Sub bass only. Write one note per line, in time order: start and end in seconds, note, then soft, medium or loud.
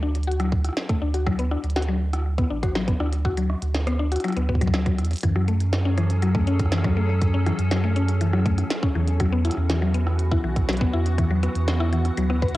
0.00 0.70 D2 medium
1.02 1.57 D2 medium
1.64 2.44 D2 medium
2.51 2.93 A1 loud
3.00 3.55 D2 loud
3.62 4.17 D2 medium
4.37 5.00 D2 loud
4.99 5.15 E2 medium
5.23 7.52 F#2 loud
7.59 8.64 F#2 medium
8.95 9.50 E2 medium
9.57 10.37 E2 medium
10.44 10.87 B1 loud
10.94 11.49 E2 loud
11.55 12.11 E2 medium
12.18 12.54 D2 medium